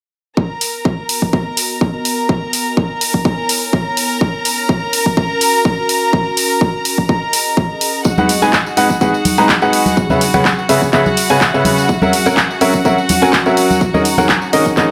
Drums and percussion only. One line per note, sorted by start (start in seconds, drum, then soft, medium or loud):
0.37 kick loud
0.61 open hi-hat medium
0.85 kick loud
1.09 open hi-hat medium
1.22 kick medium
1.33 kick loud
1.57 open hi-hat loud
1.81 kick loud
2.05 open hi-hat medium
2.29 kick loud
2.53 open hi-hat loud
2.77 kick loud
3.01 open hi-hat medium
3.14 kick medium
3.25 kick loud
3.49 open hi-hat loud
3.73 kick loud
3.97 open hi-hat medium
4.21 kick loud
4.45 open hi-hat medium
4.69 kick loud
4.93 open hi-hat medium
5.06 kick medium
5.17 kick loud
5.41 open hi-hat loud
5.65 kick loud
5.89 open hi-hat medium
6.13 kick loud
6.37 open hi-hat loud
6.61 kick loud
6.85 open hi-hat medium
6.98 kick medium
7.09 kick loud
7.33 open hi-hat loud
7.57 kick loud
7.81 open hi-hat medium
8.04 kick loud
8.04 tambourine medium
8.18 tambourine soft
8.18 high conga medium
8.29 open hi-hat medium
8.42 tambourine medium
8.53 kick loud
8.53 clap loud
8.53 tambourine medium
8.66 tambourine soft
8.77 open hi-hat medium
8.90 kick medium
8.90 tambourine medium
9.01 kick loud
9.01 tambourine medium
9.14 tambourine soft
9.25 open hi-hat loud
9.25 high conga medium
9.37 tambourine medium
9.49 kick loud
9.49 clap loud
9.49 tambourine medium
9.62 tambourine soft
9.73 open hi-hat medium
9.86 tambourine medium
9.86 high conga medium
9.97 kick loud
9.97 tambourine medium
10.10 tambourine soft
10.10 high conga medium
10.21 open hi-hat medium
10.34 tambourine medium
10.34 high conga medium
10.45 kick loud
10.45 clap loud
10.45 tambourine medium
10.59 tambourine soft
10.69 open hi-hat medium
10.82 kick medium
10.82 tambourine medium
10.93 kick loud
10.93 clap medium
10.93 tambourine medium
11.06 tambourine soft
11.06 high conga soft
11.17 open hi-hat loud
11.29 tambourine medium
11.41 kick loud
11.41 clap loud
11.41 tambourine medium
11.54 tambourine soft
11.65 open hi-hat medium
11.65 high conga medium
11.78 tambourine medium
11.89 kick loud
11.89 tambourine medium
12.02 tambourine soft
12.02 high conga medium
12.13 open hi-hat medium
12.26 tambourine medium
12.37 kick loud
12.37 clap loud
12.37 tambourine medium
12.51 tambourine soft
12.61 open hi-hat medium
12.74 kick medium
12.74 tambourine medium
12.85 kick loud
12.85 tambourine medium
12.98 tambourine soft
13.09 open hi-hat loud
13.09 high conga medium
13.22 tambourine medium
13.33 kick loud
13.33 clap loud
13.33 tambourine medium
13.46 tambourine soft
13.57 open hi-hat medium
13.71 tambourine medium
13.71 high conga medium
13.81 kick loud
13.81 tambourine medium
13.94 tambourine soft
13.94 high conga medium
14.05 open hi-hat medium
14.18 tambourine medium
14.18 high conga medium
14.29 kick loud
14.29 clap loud
14.29 tambourine medium
14.42 tambourine soft
14.53 open hi-hat medium
14.66 kick medium
14.66 tambourine medium
14.77 kick loud
14.77 clap medium
14.77 tambourine medium